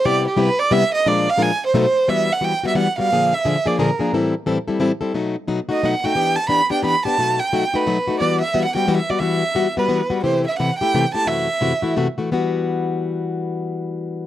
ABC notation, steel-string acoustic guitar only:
X:1
M:3/4
L:1/16
Q:"Swing" 1/4=176
K:C
V:1 name="Steel-string acoustic guitar"
[C,G,B,EG]2 z2 [C,G,B,EG] z3 [C,G,B,EG] z3 | [_B,,F,_A,DF_B]2 z2 [B,,F,A,DFB] z3 [=B,,^F,=A,^D^F] z3 | [K:Em] [E,G,B,F]2 z2 [E,G,B,F] z [G,B,F]2 [E,G,B,F] z [G,B,F]2 | [^A,,D,^E,^A,D^G]2 z2 [A,,D,E,A,DG] z [E,A,DG]2 [A,,D,E,A,DG] z [E,A,DG]2 |
[A,,E,G,CEA]2 z2 [A,,E,G,CEA] z [G,CEA]2 [A,,E,G,CEA] z [G,CEA]2 | [B,,F,A,^DF]2 z2 [B,,F,A,DF] z [A,DF]2 [B,,F,A,DF] z [A,DF]2 | [E,B,DG]2 z2 [E,B,DG] z [B,DG]2 [E,B,DG] z [B,DG]2 | [B,,F,A,^DF]2 z2 [B,,F,A,DF] z [A,DF]2 [B,,F,A,DF] z [A,DF]2 |
[E,G,B,F]2 z2 [E,G,B,F] z [G,B,F]2 [E,G,B,F] z [G,B,F]2 | [E,G,B,F]2 z2 [E,G,B,F] z [G,B,F]2 [E,G,B,F] z [G,B,F]2 | [C,E,A,EG]2 z2 [C,E,A,EG] z [A,EG]2 [C,E,A,EG] z [A,EG]2 | [F,,C,E,A,EF]2 z2 [F,,C,E,A,EF] z [E,A,EF]2 [F,,C,E,A,EF] z [E,A,EF]2 |
[E,G,B,F]12- | [E,G,B,F]12 |]